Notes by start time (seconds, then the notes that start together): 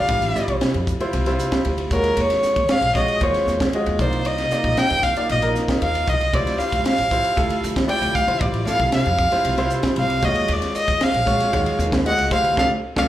Already playing: G3 D4 F4 D5 F5
0.08 A1, kick, ride
0.22 snare, ride
0.34 G3 E4 F4 D5, muted upright bass stroke, snare, hi-hat pedal
0.48 C2, kick, ride
0.61 snare, ride
0.74 F2, ride
0.87 kick, hi-hat pedal
1.00 G3 E4 F4 C5, muted upright bass stroke, ride
1.13 C2, ride
1.26 G3 E4 F4 C5, snare, ride
1.39 snare, hi-hat pedal
1.52 kick, snare, ride
1.65 D2, ride
1.78 ride
1.90 D#2 G#3 F4 F#4 A#4 C#5, kick, hi-hat pedal
2.04 ride
2.17 D#2 C#5, ride
2.30 snare, ride
2.42 muted upright bass stroke, snare, hi-hat pedal
2.56 D#2, kick, ride
2.69 F5, muted upright bass stroke, snare, ride
2.81 A#1, ride
2.95 G#3 F4 F#4 C#5 D#5, kick, snare, hi-hat pedal
3.08 ride
3.21 D#2 G#3 F4 F#4 C5 C#5, kick, ride
3.34 snare, ride
3.46 D#2, snare, hi-hat pedal
3.60 kick, snare, ride
3.73 G#3 F4 F#4 D#5, ride
3.86 D#2, ride
3.99 C2 A#3 D#4 F4 C5 D5, kick, hi-hat pedal
4.13 ride
4.25 D#5, ride
4.38 snare, ride
4.51 A#3 D#4 F4 D5, muted upright bass stroke, snare, hi-hat pedal
4.64 A#1, kick, ride
4.77 G5, snare, ride
4.90 D#2, ride
5.03 F5, kick, snare, hi-hat pedal
5.16 A#3 D#4 F4 D5, muted upright bass stroke, ride
5.29 A#1 D#5, ride
5.42 A#3 D#4 F4 A#4, ride
5.55 snare, hi-hat pedal
5.68 muted upright bass stroke, kick, snare, ride
5.82 D#2 F5, ride
5.95 ride
6.08 C2 D#5, kick, hi-hat pedal
6.21 ride
6.33 D2 G3 E4 F4 C5 D5, kick, ride
6.47 snare, ride
6.58 F5, muted upright bass stroke, snare, hi-hat pedal
6.72 D2, kick, ride
6.85 F5, muted upright bass stroke, snare, ride
6.98 A1, ride
7.11 G3 E4 F4 C5, kick, hi-hat pedal
7.24 ride
7.36 D2 G3 E4 F4 A4, kick, ride
7.50 ride
7.64 D2, hi-hat pedal
7.76 kick, snare, ride
7.87 G3 E4 F4 D5 G5, ride
8.01 D2, ride
8.15 F5, kick, hi-hat pedal
8.27 D3 G3 E4 F4 C5, ride
8.41 A1 D5, kick, ride
8.54 ride
8.66 G3 E4 F4 A4 F5, muted upright bass stroke, snare, hi-hat pedal
8.79 C2, kick, ride
8.92 F5, snare, ride
9.05 F2, ride
9.18 kick, hi-hat pedal
9.31 G3 E4 F4 C5, muted upright bass stroke, snare, ride
9.44 C2, ride
9.57 G3 E4 F4 C5, snare, ride
9.70 snare, hi-hat pedal
9.83 kick, snare, ride
9.96 C2 F5, ride
10.10 ride
10.22 D#2 G#3 F4 F#4 C#5 D#5, kick, hi-hat pedal
10.35 ride
10.48 D#2, ride
10.52 D5
10.62 snare, ride
10.75 D#5, muted upright bass stroke, hi-hat pedal
10.88 D#2, kick, ride
11.01 F5, snare, ride
11.14 A#1, ride
11.25 G#3 F4 F#4 C#5, kick, snare, hi-hat pedal
11.40 snare, ride
11.52 D#2 G#3 F4 F#4 C#5, kick, ride
11.66 ride
11.79 D#2, hi-hat pedal
11.92 kick, snare, ride
12.05 G#3 F4 F#4 D#5 F#5, ride
12.18 C#2, ride
12.31 D2 G3 E4 F4 C5 F5, kick, hi-hat pedal
12.44 ride
12.57 D2 D4 F4 A4 F5, kick, snare
12.96 D2 D4 F4 A4 F5, kick, snare